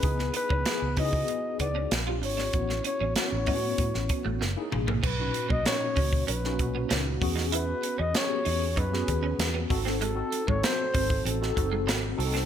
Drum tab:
CC |----------------|----------------|x---------------|----------------|
HH |x-x-x-o-x-x-x-o-|x-x-x-o-x-x-----|--x-x-o-x-x-x-o-|x-x-x-o-x-x-x-o-|
SD |-o--o-------o--o|-o--o----o--o---|----o----o--o--o|----o----o--o--o|
T2 |----------------|--------------o-|----------------|----------------|
FT |----------------|---------------o|----------------|----------------|
BD |o--o--oo--o-----|o-----o-o-o-----|o--o--oo--o---o-|--------o-o---o-|

CC |----------------|
HH |x-x-x-o-x-x-x-o-|
SD |----o----o--o--o|
T2 |----------------|
FT |----------------|
BD |---o--oo--o-----|